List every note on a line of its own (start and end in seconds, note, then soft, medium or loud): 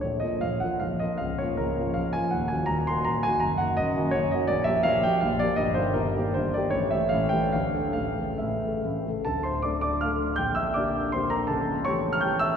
0.01 0.23 A#0 soft
0.01 0.23 A#1 soft
0.01 0.22 C#5 medium
0.20 0.41 F3 soft
0.20 0.41 A#3 soft
0.20 0.41 F4 soft
0.20 0.42 D#5 medium
0.41 0.62 A#0 soft
0.41 0.62 A#1 soft
0.41 0.62 F5 medium
0.60 0.80 F3 soft
0.60 0.81 A#3 soft
0.60 0.81 F4 soft
0.60 0.81 F#5 medium
0.80 1.00 A#0 soft
0.80 1.00 A#1 soft
0.80 1.00 F5 medium
0.99 1.18 F3 soft
0.99 1.18 A#3 soft
0.99 1.18 F4 soft
0.99 1.19 D#5 medium
1.18 1.38 C#1 soft
1.18 1.38 C#2 soft
1.18 1.38 F5 medium
1.38 1.57 F3 soft
1.38 1.58 A#3 soft
1.38 1.58 F4 soft
1.38 1.58 C#5 medium
1.57 1.78 C#1 soft
1.57 1.79 C#2 soft
1.57 1.96 A#4 medium
1.79 1.95 F3 soft
1.79 1.96 A#3 soft
1.79 1.96 F4 soft
1.94 2.14 C#1 soft
1.94 2.15 C#2 soft
1.94 2.14 F5 medium
2.13 2.31 F3 soft
2.13 2.32 A#3 soft
2.13 2.32 F4 soft
2.13 2.32 G#5 medium
2.31 2.51 D#1 soft
2.31 2.51 D#2 soft
2.31 2.50 F#5 medium
2.48 2.68 D#3 soft
2.48 2.68 A#3 soft
2.48 2.68 F#4 soft
2.48 2.69 G#5 medium
2.66 2.88 D#1 soft
2.66 2.88 D#2 soft
2.66 2.87 A#5 medium
2.87 3.06 D#3 soft
2.87 3.06 A#3 soft
2.87 3.06 F#4 soft
2.87 3.07 C6 medium
3.05 3.25 D#1 soft
3.05 3.25 D#2 soft
3.05 3.24 A#5 medium
3.23 3.42 D#3 soft
3.23 3.42 A#3 soft
3.23 3.42 F#4 soft
3.23 3.42 G#5 medium
3.40 3.60 F#1 soft
3.40 3.60 F#2 soft
3.40 3.60 A#5 medium
3.58 3.78 D#3 soft
3.58 3.78 A#3 soft
3.58 3.78 F#4 soft
3.58 3.78 F#5 medium
3.77 3.97 F#1 medium
3.77 3.98 F#2 medium
3.77 4.15 D#5 medium
3.97 4.14 D#3 soft
3.97 4.14 A#3 soft
3.97 4.14 F#4 soft
4.11 4.32 F#1 soft
4.11 4.32 F#2 medium
4.11 4.32 C#5 medium
4.31 4.49 D#3 soft
4.31 4.50 A#3 soft
4.31 4.50 F#4 medium
4.31 4.50 D#5 medium
4.48 4.68 A#1 medium
4.48 4.67 A#2 medium
4.48 4.67 D5 medium
4.64 4.85 F3 soft
4.64 4.85 A#3 soft
4.64 4.85 G4 soft
4.64 4.85 E5 medium
4.83 5.05 A#1 medium
4.83 5.05 A#2 medium
4.83 5.04 F5 medium
5.03 5.23 F3 soft
5.03 5.23 A#3 soft
5.03 5.23 G4 soft
5.03 5.24 G5 medium
5.21 5.42 A#1 medium
5.21 5.42 A#2 medium
5.21 5.41 F5 medium
5.39 5.58 F3 soft
5.39 5.59 A#3 soft
5.39 5.59 G4 soft
5.39 5.59 D5 medium
5.56 5.76 G1 medium
5.56 5.77 G2 medium
5.56 5.76 D#5 medium
5.74 5.94 D#3 soft
5.74 5.94 A#3 soft
5.74 5.94 G4 soft
5.74 5.95 C5 medium
5.94 6.16 G1 medium
5.94 6.16 G2 medium
5.94 6.34 A#4 medium
6.16 6.34 D#3 soft
6.16 6.34 A#3 soft
6.16 6.34 G4 medium
6.34 6.54 G1 soft
6.34 6.54 G2 soft
6.34 6.53 C5 medium
6.54 6.72 D#3 soft
6.54 6.72 A#3 soft
6.54 6.72 G4 medium
6.54 6.72 D5 medium
6.70 6.91 A1 medium
6.70 6.91 A2 medium
6.70 6.90 C#5 medium
6.91 7.10 E3 soft
6.91 7.10 A3 soft
6.91 7.10 G4 soft
6.91 7.11 E5 medium
7.09 7.32 A1 medium
7.09 7.32 A2 soft
7.09 7.31 F5 medium
7.29 7.50 E3 soft
7.29 7.50 A3 soft
7.29 7.51 G4 soft
7.29 7.51 G5 medium
7.52 7.74 D1 soft
7.52 7.73 D2 soft
7.52 7.92 F5 medium
7.75 7.93 D3 soft
7.75 7.93 A3 soft
7.75 7.93 A4 soft
7.93 8.17 A1 soft
7.93 8.17 A2 soft
7.93 8.39 F5 medium
8.17 8.38 C#3 soft
8.17 8.38 A3 soft
8.17 8.38 A4 soft
8.38 8.62 A1 soft
8.38 8.62 A2 soft
8.38 9.06 E5 medium
8.64 8.83 C#3 soft
8.64 8.83 A3 soft
8.64 8.83 A4 soft
8.85 9.06 A1 soft
8.85 9.06 A2 soft
9.06 9.25 C#3 soft
9.06 9.25 A3 soft
9.06 9.24 A4 soft
9.25 10.36 D1 soft
9.25 10.36 D2 soft
9.25 9.44 A4 medium
9.25 9.45 A5 medium
9.43 9.63 C5 soft
9.43 9.64 C6 medium
9.62 10.00 D3 soft
9.62 10.00 A3 soft
9.62 10.00 A4 soft
9.62 9.82 D5 soft
9.62 9.80 D6 medium
9.81 10.02 D5 medium
9.81 10.02 D6 medium
10.01 10.35 D3 soft
10.01 10.35 A3 soft
10.01 10.36 A4 soft
10.01 10.36 F5 medium
10.01 10.38 F6 medium
10.36 11.47 A#0 soft
10.36 11.47 A#1 medium
10.36 10.55 G5 medium
10.36 10.56 G6 medium
10.55 10.75 E5 medium
10.55 10.76 E6 medium
10.74 11.11 D3 soft
10.74 11.11 A#3 soft
10.74 11.12 G4 soft
10.74 11.12 D5 medium
10.74 11.14 D6 medium
11.12 11.47 D3 soft
11.12 11.47 A#3 soft
11.12 11.47 G4 soft
11.12 11.31 C5 medium
11.12 11.32 C6 medium
11.30 11.48 A#4 medium
11.30 11.49 A#5 medium
11.47 12.56 C#1 soft
11.47 12.55 C#2 medium
11.47 11.83 A4 medium
11.47 11.85 A5 medium
11.85 12.21 E3 soft
11.85 12.21 A3 soft
11.85 12.21 G4 soft
11.85 12.12 C#5 medium
11.85 12.14 C#6 medium
12.13 12.23 F6 medium
12.21 12.55 E3 soft
12.21 12.56 A3 soft
12.21 12.56 G4 soft
12.21 12.40 G5 medium
12.21 12.40 G6 medium
12.39 12.56 E5 medium
12.39 12.56 E6 loud